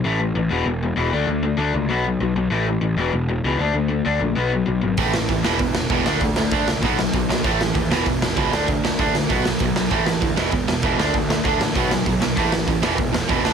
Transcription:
<<
  \new Staff \with { instrumentName = "Distorted electric guitar" } { \clef bass \time 4/4 \key e \mixolydian \tempo 4 = 195 r1 | r1 | r1 | r1 |
<a, e a>8 <a, e>8 <a, e>8 <e, b, e>8 <e, b,>8 <e, b,>8 <e, b, e>8 <d a d'>8 | <d a>8 <d a>8 <d a d'>8 <d a>8 <b, fis b>8 <b, fis>8 <b, fis>8 <b, fis>8 | <a, e a>8 <a, e>8 <a, e>8 <e, b, e>8 <e, b,>8 <e, b,>8 <e, b, e>8 <d a d'>8 | <d a>8 <d a>8 <d a d'>8 <d a>8 <b, fis b>8 <b, fis>8 <b, fis>8 <b, fis>8 |
<a, e a>8 <a, e>8 <a, e>8 <e, b, e>8 <e, b,>8 <e, b,>8 <e, b, e>8 <d a d'>8 | <d a>8 <d a>8 <d a d'>8 <d a>8 <b, fis b>8 <b, fis>8 <b, fis>8 <b, fis>8 | <a, e a>8 <a, e>8 <a, e>8 <e, b, e>8 <e, b,>8 <e, b,>8 <e, b, e>8 <d a d'>8 | }
  \new Staff \with { instrumentName = "Overdriven electric guitar" } { \clef bass \time 4/4 \key e \mixolydian <a, e a>8 <a, e>8 <a, e>8 <e, b, e>8 <e, b,>8 <e, b,>8 <e, b, e>8 <d a d'>8 | <d a>8 <d a>8 <d a d'>8 <d a>8 <b, fis b>8 <b, fis>8 <b, fis>8 <b, fis>8 | <a, e a>8 <a, e>8 <a, e>8 <e, b, e>8 <e, b,>8 <e, b,>8 <e, b, e>8 <d a d'>8 | <d a>8 <d a>8 <d a d'>8 <d a>8 <b, fis b>8 <b, fis>8 <b, fis>8 <b, fis>8 |
<a, e a>8 <a, e>8 <a, e>8 <e, b, e>8 <e, b,>8 <e, b,>8 <e, b, e>8 <d a d'>8 | <d a>8 <d a>8 <d a d'>8 <d a>8 <b, fis b>8 <b, fis>8 <b, fis>8 <b, fis>8 | <a, e a>8 <a, e>8 <a, e>8 <e, b, e>8 <e, b,>8 <e, b,>8 <e, b, e>8 <d a d'>8 | <d a>8 <d a>8 <d a d'>8 <d a>8 <b, fis b>8 <b, fis>8 <b, fis>8 <b, fis>8 |
<a, e a>8 <a, e>8 <a, e>8 <e, b, e>8 <e, b,>8 <e, b,>8 <e, b, e>8 <d a d'>8 | <d a>8 <d a>8 <d a d'>8 <d a>8 <b, fis b>8 <b, fis>8 <b, fis>8 <b, fis>8 | <a, e a>8 <a, e>8 <a, e>8 <e, b, e>8 <e, b,>8 <e, b,>8 <e, b, e>8 <d a d'>8 | }
  \new Staff \with { instrumentName = "Picked electric bass" } { \clef bass \time 4/4 \key e \mixolydian a,,4 a,,8 e,,8 e,,4 e,,8 d,8 | d,4 d,8 cis,8 b,,4 b,,8 b,,8 | a,,4 a,,8 e,,8 e,,4 cis,8 d,8 | d,4 d,8 bes,,8 b,,4 b,,8 gis,,8 |
a,,4 a,,8 e,,8 e,,4 e,,8 d,8 | d,4 d,8 cis,8 b,,4 b,,8 b,,8 | a,,4 dis,8 e,,8 e,,4 cis,8 d,8 | d,4 d,8 d,8 b,,4 b,,8 b,,8 |
a,,4 d,8 e,,8 e,,4 e,,8 d,8 | d,4 d,8 a,,8 b,,4 b,,8 b,,8 | a,,4 a,,8 e,,8 e,,4 e,,8 d,8 | }
  \new DrumStaff \with { instrumentName = "Drums" } \drummode { \time 4/4 r4 r4 r4 r4 | r4 r4 r4 r4 | r4 r4 r4 r4 | r4 r4 r4 r4 |
<hho bd>8 sn8 <hho bd>8 sn8 <hho bd>8 sn8 <hho bd>8 sn8 | <hho bd>8 sn8 <hho bd>8 sn8 <hho bd>8 sn8 <hho bd>8 sn8 | <hho bd>8 sn8 <hho bd>8 sn8 <hho bd>8 sn8 <hho bd>8 sn8 | <hho bd>8 sn8 <hho bd>8 sn8 <hho bd>8 sn8 <hho bd>8 sn8 |
<hho bd>8 sn8 <hho bd>8 sn8 <hho bd>8 sn8 <hho bd>8 sn8 | <hho bd>8 sn8 <hho bd>8 sn8 <hho bd>8 sn8 <hho bd>8 sn8 | <hho bd>8 sn8 <hho bd>8 sn8 <hho bd>8 sn8 <hho bd>8 sn8 | }
>>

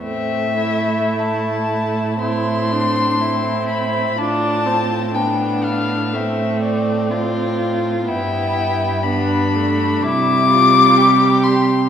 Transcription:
<<
  \new Staff \with { instrumentName = "Violin" } { \time 4/4 \key a \minor \tempo 4 = 62 e''4 a''4 c'''4. b''8 | a''4 g''8 f''8 e''8 d''4 r8 | g''4 b''4 d'''4. c'''8 | }
  \new Staff \with { instrumentName = "Violin" } { \time 4/4 \key a \minor c'8 e'4. e'8 d'8 e'4 | f'4 d'4 c'4 f'4 | e'4 d'4 e'8 f'8 g'4 | }
  \new Staff \with { instrumentName = "Viola" } { \time 4/4 \key a \minor a2 c'4 c'4 | d'8 c'8 b4 a4 c'4 | b4 b8 a8 g2 | }
  \new Staff \with { instrumentName = "Cello" } { \clef bass \time 4/4 \key a \minor a,1 | a,1 | g,2 c2 | }
>>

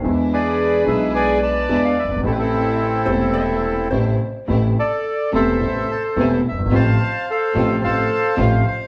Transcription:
<<
  \new Staff \with { instrumentName = "Bandoneon" } { \time 4/4 \key a \minor \tempo 4 = 108 << { r8 d''4 e''8 gis''8 a''8. f''16 e''8 | a'32 b'32 a'2~ a'8. r4 | r8 d''4 e''4 a''8 gis''8 e''8 | a''4 f''4 a''4 f''8 f''8 | } \\ { r8 <gis' b'>4. <b' d''>8 d''4. | <c' e'>16 <c' e'>2~ <c' e'>8. r4 | r8 a'4 <a' c''>2 r8 | <c'' f''>4 <a' c''>4 <c'' f''>2 | } >> }
  \new Staff \with { instrumentName = "Hollow-body jazz guitar" } { \time 4/4 \key a \minor c''16 r2. r8. | r4. c''8 e''4 c''4 | r1 | r1 | }
  \new Staff \with { instrumentName = "String section" } { \time 4/4 \key a \minor <gis d' e'>4. <gis d' e'>4. <gis d' e'>8 r8 | <a c' e'>4. <a c' e'>4. <a c' e'>8 r8 | <a c' e'>8 r4 <a c' e'>8 <a c' e'>8 r8 <a c' e'>8 r8 | <a c' f'>8 r4 <a c' f'>8 <a c' f'>8 r8 <a c' f'>8 r8 | }
  \new Staff \with { instrumentName = "Grand piano" } { \clef bass \time 4/4 \key a \minor <e, d e gis b e'>4. <b,, b, d gis b e'>4. <e, d e gis b e'>8 r32 fis,,32 g,,32 gis,,32 | <a,, a, c e a e'>4. <e,, e, c e a e'>4. <a,, a, c e a e'>8 r8 | <a,, a, c e a e'>8 r4 <e,, e, c e a e'>8 <a,, a, c e a e'>8 r8 <e,, e, c e a e'>8 r32 fis,,32 g,,32 gis,,32 | <a,, a, c f a f'>8 r4 <a,, a, c f a f'>8 <a,, a, c f a f'>8 r8 <a,, a, c f a f'>8 r8 | }
  \new Staff \with { instrumentName = "Upright bass" } { \clef bass \time 4/4 \key a \minor e,4~ e,16. r32 b,,4~ b,,16. r32 e,16. r16 fis,,32 g,,32 gis,,32 | a,,4~ a,,16. r32 e,,4~ e,,16. r32 a,,16. r8 r32 | a,,16. r4 r32 e,,16. r32 a,,16. r8 r32 e,,16. r16 fis,,32 g,,32 gis,,32 | a,,16. r4 r32 a,,16. r32 a,,16. r8 r32 a,,16. r8 r32 | }
>>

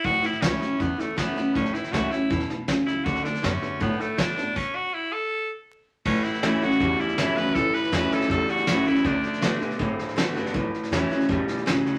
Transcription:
<<
  \new Staff \with { instrumentName = "Tenor saxophone" } { \time 4/4 \key a \mixolydian \tempo 4 = 160 fis'8 e'8 cis'4 b8 a8 b4 | cis'8 e'8 fis'8 e'4 r4 e'8 | fis'8 d'8 cis'4 b8 a8 d'4 | cis'8 fis'8 e'8 a'4 r4. |
cis'8 e'4 fis'4 e'4 b'8 | a'8 b'4 a'8 a'8 fis'4 e'8 | d'8 d'4 r2 r8 | r1 | }
  \new Staff \with { instrumentName = "Steel-string acoustic guitar" } { \time 4/4 \key a \mixolydian << { r4 <e a cis' e'>8 <cis' e'>8 r4 <e a cis' e'>8 <cis' e'>8 | r4 <e a cis' e'>8 <cis' e'>8 r2 | r4 <d a fis'>4 r4 <d a d' fis'>8 <d' fis'>8 | r1 |
r4 <e a cis' e'>8 <cis' e'>8 r4 <e a cis' e'>8 <cis' e'>8 | r4 <e a cis' e'>4 r4 <e a cis' e'>8 <cis' e'>8 | r4 <d a d' fis'>8 <d' fis'>8 r4 <d a d' fis'>8 <d' fis'>8 | r4 <e a cis' e'>8 <cis' e'>8 r2 | } \\ { a,2 e,2 | a,2 b,4 cis4 | d2 a,2 | r1 |
a,2 e,2 | a,2 e,2 | d2 a,2 | a,2 b,4 cis4 | } >> }
  \new Staff \with { instrumentName = "Clean electric guitar" } { \clef bass \time 4/4 \key a \mixolydian <a, e>8 <a, e>8 <a, fis>8 <a, fis>8 <a, e>8 <a, e>8 <a, fis>8 <a, fis>8 | <a, e>8 <a, e>8 <a, fis>8 <a, fis>8 <a, e>8 <a, e>8 <a, fis>8 <a, fis>8 | <d a>8 <d a>8 <d b>8 <d b>8 <d a>8 <d a>8 <d b>8 <d b>8 | r1 |
<a, e>4 <a, fis>8 <a, fis>8 <a, g>4 <a, fis>8 <a, fis>8 | <a, e>4 <a, fis>8 <a, fis>8 <a, g>4 <a, fis>8 <a, fis>8 | <d a>4 <d b>8 <d b>8 <d c'>4 <d b>8 <d b>8 | <a, e>4 <a, fis>8 <a, fis>8 <a, g>4 <a, fis>8 <a, fis>8 | }
  \new Staff \with { instrumentName = "Upright bass" } { \clef bass \time 4/4 \key a \mixolydian a,,8 r8 cis,8 r8 e,8 r8 fis,8 cis,8 | a,,8 r8 cis,8 r8 e,8 r4 cis,8 | d,8 r8 fis,8 r8 a,8 r8 b,8 g,,8 | r1 |
a,,8 r8 d,8 fis,8 e,8 r8 d,8 cis,8 | a,,8 r8 e,8 r8 e,8 r8 g,8 fis,8 | d,8 r8 g,8 b,8 a,8 r8 g,8 g,,8 | a,,8 r8 e,8 r8 e,8 r8 g,8 cis,8 | }
  \new DrumStaff \with { instrumentName = "Drums" } \drummode { \time 4/4 <bd sn>8 sn16 sn16 <hhp bd sn>8 sn8 <bd sn>8 sn8 <hhp bd sn>8 sn8 | <bd sn>16 sn16 sn16 sn16 <hhp bd sn>8 sn8 <bd sn>16 sn16 sn8 <hhp bd sn>8 sn8 | <bd sn>16 sn16 sn16 sn16 <hhp bd sn>8 sn8 <bd sn>8 sn8 <hhp bd sn>8 sn8 | <cymc bd>4 r4 r4 r4 |
<cymc bd sn>8 sn16 sn16 <hhp sn>8 sn16 sn16 <bd sn>8 sn16 sn16 <hhp sn>8 sn8 | <bd sn>8 sn16 sn16 <hhp sn>8 sn16 sn16 <bd sn>8 sn16 sn16 <hhp sn>8 sn16 sn16 | <bd sn>8 sn16 sn16 <hhp sn>8 sn16 sn16 <bd sn>8 sn16 sn16 <hhp sn>8 sn16 sn16 | <bd sn>8 sn16 sn16 <hhp sn>8 sn16 sn16 <bd sn>8 sn16 sn16 <hhp sn>8 sn16 sn16 | }
>>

